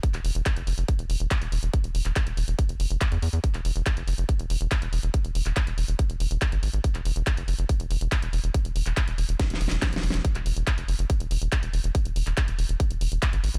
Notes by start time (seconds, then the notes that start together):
0.03 kick, closed hi-hat
0.14 E1, clap, closed hi-hat
0.25 E1, open hi-hat
0.35 E1, closed hi-hat
0.46 kick, clap, closed hi-hat
0.56 F1, closed hi-hat
0.67 F1, open hi-hat
0.78 F1, closed hi-hat
0.88 kick, closed hi-hat
0.99 E1, closed hi-hat
1.10 E1, open hi-hat
1.20 E1, closed hi-hat
1.31 kick, clap, closed hi-hat
1.42 E1, closed hi-hat
1.52 E1, open hi-hat
1.63 E1, closed hi-hat
1.73 kick, closed hi-hat
1.84 E1, closed hi-hat
1.95 E1, open hi-hat
2.05 E1, clap, closed hi-hat
2.16 kick, clap, closed hi-hat
2.27 E1, closed hi-hat
2.37 E1, open hi-hat
2.48 E1, closed hi-hat
2.59 kick, closed hi-hat
2.69 F1, closed hi-hat
2.80 F1, open hi-hat
2.91 F1, closed hi-hat
3.01 kick, clap, closed hi-hat
3.12 E2, closed hi-hat
3.22 E2, open hi-hat
3.33 E2, closed hi-hat
3.44 kick, closed hi-hat
3.54 E1, clap, closed hi-hat
3.65 E1, open hi-hat
3.76 E1, closed hi-hat
3.86 kick, clap, closed hi-hat
3.97 F1, closed hi-hat
4.08 F1, open hi-hat
4.18 F1, closed hi-hat
4.29 kick, closed hi-hat
4.39 E1, closed hi-hat
4.50 E1, open hi-hat
4.61 E1, closed hi-hat
4.71 kick, clap, closed hi-hat
4.82 E1, closed hi-hat
4.93 E1, open hi-hat
5.03 E1, closed hi-hat
5.14 kick, closed hi-hat
5.25 E1, closed hi-hat
5.35 E1, open hi-hat
5.46 E1, clap, closed hi-hat
5.56 kick, clap, closed hi-hat
5.67 E1, closed hi-hat
5.78 E1, open hi-hat
5.88 E1, closed hi-hat
5.99 kick, closed hi-hat
6.10 E1, closed hi-hat
6.20 E1, open hi-hat
6.31 E1, closed hi-hat
6.42 kick, clap, closed hi-hat
6.52 G#1, closed hi-hat
6.63 G#1, open hi-hat
6.74 G#1, closed hi-hat
6.84 kick, closed hi-hat
6.95 E1, clap, closed hi-hat
7.05 E1, open hi-hat
7.16 E1, closed hi-hat
7.27 kick, clap, closed hi-hat
7.37 F1, closed hi-hat
7.48 F1, open hi-hat
7.59 F1, closed hi-hat
7.69 kick, closed hi-hat
7.80 E1, closed hi-hat
7.91 E1, open hi-hat
8.01 E1, closed hi-hat
8.12 kick, clap, closed hi-hat
8.22 E1, closed hi-hat
8.33 E1, open hi-hat
8.44 E1, closed hi-hat
8.54 kick, closed hi-hat
8.65 E1, closed hi-hat
8.76 E1, open hi-hat
8.86 E1, clap, closed hi-hat
8.97 kick, clap, closed hi-hat
9.08 E1, closed hi-hat
9.18 E1, open hi-hat
9.29 E1, closed hi-hat
9.39 kick, snare, closed hi-hat
9.50 E1, snare, closed hi-hat
9.61 E1, open hi-hat
9.68 E1, snare, closed hi-hat
9.82 kick, snare, clap, closed hi-hat
9.93 E1, snare, closed hi-hat
10.03 E1, open hi-hat
10.10 E1, snare, closed hi-hat
10.25 kick, closed hi-hat
10.35 E1, clap, closed hi-hat
10.46 E1, open hi-hat
10.57 E1, closed hi-hat
10.67 kick, clap, closed hi-hat
10.78 F1, closed hi-hat
10.88 F1, open hi-hat
10.99 F1, closed hi-hat
11.10 kick, closed hi-hat
11.20 E1, closed hi-hat
11.31 E1, open hi-hat
11.42 E1, closed hi-hat
11.52 kick, clap, closed hi-hat
11.63 E1, closed hi-hat
11.74 E1, open hi-hat
11.84 E1, closed hi-hat
11.95 kick, closed hi-hat
12.05 E1, closed hi-hat
12.16 E1, open hi-hat
12.27 E1, clap, closed hi-hat
12.37 kick, clap, closed hi-hat
12.48 E1, closed hi-hat
12.59 E1, open hi-hat
12.69 E1, closed hi-hat
12.80 kick, closed hi-hat
12.91 E1, closed hi-hat
13.01 E1, open hi-hat
13.12 E1, closed hi-hat
13.22 kick, clap, closed hi-hat
13.33 G#1, closed hi-hat
13.44 G#1, open hi-hat
13.54 G#1, closed hi-hat